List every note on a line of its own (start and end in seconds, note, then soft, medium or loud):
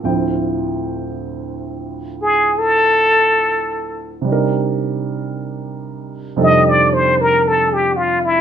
0.04 4.27 D2 soft
0.04 4.26 A2 soft
0.04 4.27 F3 soft
0.04 4.27 C4 soft
0.04 4.27 E4 soft
0.04 4.27 G5 soft
2.22 2.60 G#4 medium
2.58 4.19 A4 loud
4.22 6.35 C3 soft
4.22 6.36 G3 soft
4.27 6.36 D4 soft
4.27 6.36 D#4 soft
4.32 6.40 A#4 medium
6.36 8.41 F2 medium
6.36 8.41 C3 soft
6.36 8.41 G3 soft
6.36 8.41 D4 soft
6.36 8.41 D#4 medium
6.36 8.41 A4 medium
6.43 6.71 D#5 medium
6.69 6.95 D5 medium
6.93 7.23 C5 medium
7.21 7.49 A#4 medium
7.47 7.75 A4 medium
7.73 7.98 G4 medium
7.96 8.26 F4 medium
8.25 8.41 E4 medium